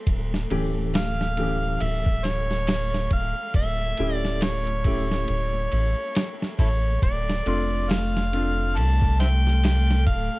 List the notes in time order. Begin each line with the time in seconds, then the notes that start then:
Already playing: A3 A4
0.07 D1, kick, ride
0.34 snare
0.50 D1 E3 A3 C#4 G4, ride
0.94 F5, snare, open hi-hat
1.21 snare
1.37 E3 A3 C#4 G4, ride
1.80 D1 E5, ride
2.06 kick
2.24 C#5, snare, ride
2.51 snare
2.67 snare, ride
2.94 snare
3.11 D1 F5, kick, ride
3.54 D1 E5, kick, ride
3.97 D1 A3 C#4 E4 G4, ride
4.15 D5
4.25 snare
4.41 C#5, snare, ride
4.67 ride
4.84 A3 C#4 E4 G4, kick, ride
5.11 snare
5.28 D1, ride
5.72 A1, ride
6.15 snare, ride
6.42 snare
6.59 A1 E4 A4 C#5, kick, ride
7.02 D1 A3 A4 D5, kick, ride
7.30 snare
7.46 F1 A3 C4 D4 F4, ride
7.89 F5, snare, open hi-hat
8.17 snare
8.32 A3 C4 D4 F4, ride
8.77 C2 A5, ride
9.02 kick
9.20 C5 E5 G5, snare, ride
9.47 snare
9.64 snare, ride
9.91 snare
10.07 D1 F5, kick, ride